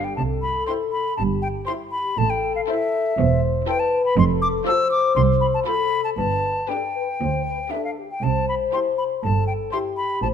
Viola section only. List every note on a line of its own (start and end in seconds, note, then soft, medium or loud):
0.69 1.06 E4 soft
1.69 2.06 E4 soft
2.69 3.05 E4 soft
3.67 4.04 E4 medium
4.67 5.04 F4 medium
5.67 6.05 F4 soft
6.69 7.08 D4 soft
7.72 8.10 D4 soft
8.74 9.11 E4 soft
9.72 10.10 E4 soft